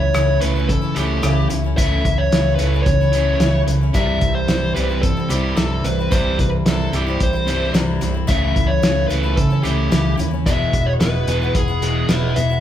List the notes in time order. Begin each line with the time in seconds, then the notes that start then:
Already playing: C#2 C#3 E3 A3 C#4 E4
0.00 C#5
0.14 C#2 C#3 E3 A3 C#4 E4, cross-stick, closed hi-hat
0.40 C#2 C#3 E3 A3 C#4 B4, closed hi-hat
0.45 E4
0.56 A3 C#4 E4
0.68 C#3 E3 A4, kick, closed hi-hat
0.82 A3 C#4 E4
0.95 C#2 C#3 E3 A3 C#4 G4, closed hi-hat
1.00 E4
1.23 C#2 C#3 E3 A3 C#4 E4, cross-stick, closed hi-hat
1.50 C#2 C#3 E3 A3 C#4 E4, closed hi-hat
1.64 A3 C#4 E4
1.77 C#2 C#3 E3 A3 C#4 E4 E5, kick, closed hi-hat
2.04 C#2 C#3 E3, kick, closed hi-hat
2.18 C#5
2.32 C#2 C#3 E3 A3 C#4 E4, snare, closed hi-hat
2.55 C#3 E3 B4, closed hi-hat
2.60 C#2 A3 C#4 E4
2.74 A3 C#4 E4
2.83 C#2 C#3 E3 C#5, kick, closed hi-hat
3.01 A3 C#4 E4
3.12 C#3 E3 A3 C#4, closed hi-hat
3.17 E4
3.40 C#2 C#3 E3 A3 C#4 E4, snare, closed hi-hat
3.67 C#2 C#3 E3 A3 C#4 E4, closed hi-hat
3.81 A3 C#4 E4
3.94 C2 C3 E3 G3 C4 E4 E5, kick, closed hi-hat
4.21 C2 C3 E3, kick, closed hi-hat
4.35 C5
4.48 C2 C3 E3 G3 C4 E4, snare, closed hi-hat
4.74 C2 C3 E3 G3 B4, closed hi-hat
4.79 C4 E4
4.89 G3 C4 E4
5.02 C3 E3 A4, kick, closed hi-hat
5.17 G3 C4 E4
5.29 C2 C3 E3 G3 C4 E4 G4, closed hi-hat
5.57 C2 C3 E3 G3 C4 E4 A4, snare, closed hi-hat
5.84 C2 C3 E3 G3 C4 E4 B4, closed hi-hat
5.99 G3 C4 E4
6.11 C2 C3 E3 G3 C4 E4 C5, kick, closed hi-hat
6.38 C2 C3 E3 B4, kick, closed hi-hat
6.65 C2 C3 E3 G3 C4 E4 A4, snare, closed hi-hat
6.92 C2 C3 E3 G3 C4 G4, closed hi-hat
6.96 E4
7.07 G3 C4 E4
7.20 C2 C3 E3 C5, kick, closed hi-hat
7.33 G3 C4 E4
7.47 C3 E3 G3 C4 E4, closed hi-hat
7.74 C2 C3 E3 G3 C4 E4, snare, closed hi-hat
8.01 C2 C3 E3 G3 C4 E4, closed hi-hat
8.14 G3 C4 E4
8.27 C#2 C#3 E3 A3 C#4 E4 E5, kick, closed hi-hat
8.56 C#2 C#3 E3, kick, closed hi-hat
8.68 C#5
8.82 C#2 C#3 E3 A3 C#4 E4, snare, closed hi-hat
9.08 C#2 C#3 E3 A3 C#4 B4, closed hi-hat
9.12 E4
9.23 A3 C#4 E4
9.36 C#3 E3 A4, kick, closed hi-hat
9.50 A3 C#4 E4
9.63 C#2 C#3 E3 A3 C#4 E4 G4, closed hi-hat
9.91 C#2 C#3 E3 A3 C#4 E4, snare, closed hi-hat
10.17 D#2 C#3 E3 A3 C#4 E4, closed hi-hat
10.31 A3 C#4 E4
10.46 E1 E2 B2 E3 G#3 B3 E4 E5, kick, closed hi-hat
10.73 E1 E2 B2, kick, closed hi-hat
10.86 C#5
11.00 E1 E2 B2 E3 G#3 B3 E4 B4, snare, closed hi-hat
11.27 E1 E2 B2 E3 G#3 B3 E4, closed hi-hat
11.42 E3 G#3 B3 E4
11.55 E1 E2 B2 G#4, kick, closed hi-hat
11.68 E3 G#3 B3 E4
11.82 E2 B2 E3 G#3 B3 E4, closed hi-hat
12.09 E1 E2 B2 E3 G#3 B3 E4 B4, snare, closed hi-hat
12.36 E1 E2 B2 E3 G#3 B3 E4 E5, closed hi-hat
12.50 E3 G#3 B3 E4